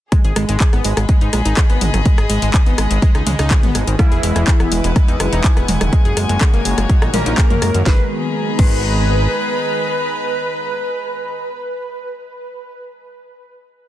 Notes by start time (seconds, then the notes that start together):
0.12 G#3 G#4, kick, cross-stick, closed hi-hat
0.24 G#1 G#4 B5, closed hi-hat
0.28 D#5
0.36 G#1 G#3, cross-stick, open hi-hat
0.49 G#1 G#3, closed hi-hat
0.60 G#4, kick, clap, closed hi-hat
0.73 G#1 B3, cross-stick, closed hi-hat
0.85 G#1 G#3, open hi-hat
0.97 G#1 G#3, cross-stick, closed hi-hat
1.09 G#3, kick, closed hi-hat
1.21 G#2 D#4, closed hi-hat
1.33 A#1 G#3, cross-stick, open hi-hat
1.45 G#1 D#4, closed hi-hat
1.57 G#4, kick, cross-stick, clap, closed hi-hat
1.70 G#1 B3, closed hi-hat
1.81 G#1 G#3, mid tom, open hi-hat
1.94 G#1 D#3, cross-stick, closed hi-hat, mid tom
2.06 G#3, kick, closed hi-hat
2.18 G#1 G#4, cross-stick, closed hi-hat
2.30 G#1 G#3, open hi-hat
2.42 G#1 G#3, closed hi-hat
2.54 G#4, kick, cross-stick, clap, closed hi-hat
2.66 G#1 B3, closed hi-hat
2.78 G#1 G#3, cross-stick, open hi-hat
2.91 G#1 G#3, closed hi-hat
3.02 G#3, kick, closed hi-hat
3.15 C#2 D#4, cross-stick, closed hi-hat
3.26 C#2 G#3, mid tom, open hi-hat
3.39 C#2 D#4, cross-stick, closed hi-hat
3.51 G#4, kick, clap, closed hi-hat
3.63 G#1 B3, closed hi-hat, mid tom
3.75 G#1 G#3, cross-stick, open hi-hat
3.87 G#1 D#3, closed hi-hat
3.99 B2 E3 G#3 E4, kick, cross-stick, closed hi-hat
4.12 E1 G#4 B4, closed hi-hat
4.23 E1 G#3 F#5, open hi-hat
4.36 E1 G#3, cross-stick, closed hi-hat
4.47 G#4, kick, clap, closed hi-hat
4.54 G#5
4.60 E1 B3, cross-stick, closed hi-hat
4.72 E1 G#3, open hi-hat
4.84 E1 G#3, closed hi-hat
4.96 G#3, kick, cross-stick, closed hi-hat
5.08 E2 D#4, closed hi-hat
5.20 F#1 G#3, cross-stick, open hi-hat
5.33 E1 D#4, closed hi-hat
5.44 G#4, kick, clap, closed hi-hat
5.57 E1 B3, cross-stick, closed hi-hat
5.68 E1 G#3, mid tom, open hi-hat
5.81 E1 D#3, cross-stick, closed hi-hat, mid tom
5.92 C#3 F#3 G#3 A#3 F#4, kick, closed hi-hat
6.05 F#1 G#4, closed hi-hat
6.17 F#1 G#3 C#5, cross-stick, open hi-hat
6.29 F#1 G#3, closed hi-hat
6.41 G#4, kick, cross-stick, clap, closed hi-hat
6.54 F#1 A#3, closed hi-hat
6.65 F#1 G#3 A#5, open hi-hat
6.78 F#1 G#3, cross-stick, closed hi-hat
6.89 G#3, kick, closed hi-hat
7.02 A#1 D#4, cross-stick, closed hi-hat
7.14 A#1 G#3 A#3 A#4, mid tom, open hi-hat
7.26 A#1 D#4, closed hi-hat
7.38 G#4, kick, cross-stick, clap, closed hi-hat
7.50 F#2 A#3, closed hi-hat, mid tom
7.62 F#2 G#3, cross-stick, open hi-hat
7.74 F#2 D#3, closed hi-hat
7.86 G#1 D#3 G#3 B3 G#4 B4, kick, snare
7.94 D#5
8.01 A#5
8.08 B5
8.59 G#1 G#3 B4, kick, crash